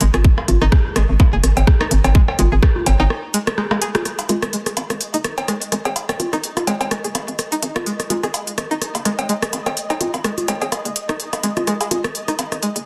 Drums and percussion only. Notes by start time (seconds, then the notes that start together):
0.01 closed hi-hat
0.14 cross-stick, closed hi-hat, high conga
0.24 kick
0.38 cross-stick, cowbell
0.48 closed hi-hat, high conga
0.62 cross-stick
0.72 kick, cross-stick
0.96 cross-stick, closed hi-hat
1.20 kick, cross-stick, cowbell
1.44 cross-stick, closed hi-hat
1.57 closed hi-hat, cowbell
1.67 kick, cross-stick
1.81 cross-stick
1.91 closed hi-hat
2.04 cross-stick, closed hi-hat, cowbell
2.15 kick
2.28 cross-stick, cowbell
2.39 closed hi-hat, high conga
2.63 kick, cross-stick
2.76 high conga
2.86 closed hi-hat, cowbell
3.00 cowbell
3.10 cross-stick
3.34 closed hi-hat
3.47 cross-stick, closed hi-hat
3.58 cross-stick
3.71 cross-stick, cowbell
3.82 closed hi-hat
3.95 cross-stick, closed hi-hat, high conga
4.05 cross-stick, closed hi-hat
4.19 closed hi-hat, cowbell
4.29 closed hi-hat, high conga
4.42 cross-stick, closed hi-hat
4.53 closed hi-hat
4.66 cross-stick, closed hi-hat
4.77 closed hi-hat, cowbell
4.90 cross-stick, closed hi-hat
5.01 closed hi-hat
5.14 closed hi-hat
5.24 cross-stick, closed hi-hat
5.38 closed hi-hat, cowbell
5.48 cross-stick, closed hi-hat
5.62 closed hi-hat
5.72 cross-stick, closed hi-hat
5.85 closed hi-hat, cowbell
5.96 closed hi-hat, cowbell
6.09 cross-stick, closed hi-hat, cowbell
6.20 closed hi-hat, high conga
6.33 cross-stick, closed hi-hat
6.44 closed hi-hat
6.57 cross-stick, closed hi-hat, cowbell, high conga
6.67 closed hi-hat, cowbell
6.81 closed hi-hat, cowbell
6.91 cross-stick, closed hi-hat
7.04 closed hi-hat
7.15 cross-stick, closed hi-hat, cowbell
7.28 closed hi-hat
7.39 cross-stick, closed hi-hat
7.52 closed hi-hat
7.63 closed hi-hat
7.76 cross-stick, closed hi-hat, cowbell, high conga
7.86 closed hi-hat
8.00 cross-stick, closed hi-hat
8.10 closed hi-hat, high conga
8.23 cross-stick, closed hi-hat
8.34 closed hi-hat, cowbell
8.47 closed hi-hat
8.58 cross-stick, closed hi-hat
8.71 closed hi-hat
8.82 cross-stick, closed hi-hat
8.95 closed hi-hat, cowbell
9.05 cross-stick, closed hi-hat
9.19 closed hi-hat, cowbell
9.29 closed hi-hat
9.42 cross-stick, closed hi-hat
9.53 closed hi-hat, cowbell
9.66 cross-stick, closed hi-hat, cowbell
9.77 closed hi-hat
9.90 cross-stick, closed hi-hat, cowbell
10.01 closed hi-hat, high conga
10.14 closed hi-hat, cowbell
10.24 cross-stick, closed hi-hat
10.38 closed hi-hat, high conga
10.48 cross-stick, closed hi-hat, cowbell
10.62 closed hi-hat, cowbell
10.72 cross-stick, closed hi-hat, cowbell
10.85 closed hi-hat
10.96 closed hi-hat
11.09 cross-stick, closed hi-hat
11.20 closed hi-hat
11.33 cross-stick, closed hi-hat, cowbell
11.43 closed hi-hat
11.57 cross-stick, closed hi-hat, high conga
11.67 cross-stick, closed hi-hat
11.81 closed hi-hat, cowbell
11.91 closed hi-hat, high conga
12.04 cross-stick, closed hi-hat
12.15 closed hi-hat
12.28 cross-stick, closed hi-hat
12.39 closed hi-hat, cowbell
12.52 cross-stick, closed hi-hat
12.63 closed hi-hat
12.76 closed hi-hat